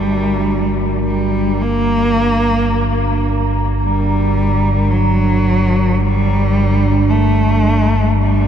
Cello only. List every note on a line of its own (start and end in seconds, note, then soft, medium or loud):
0.00 1.06 G3 medium
1.06 1.64 G3 medium
1.62 3.26 A#3 loud
3.82 4.92 G3 medium
4.90 6.01 F#3 loud
6.00 7.12 G3 loud
7.10 8.18 A3 loud
8.19 8.47 G3 loud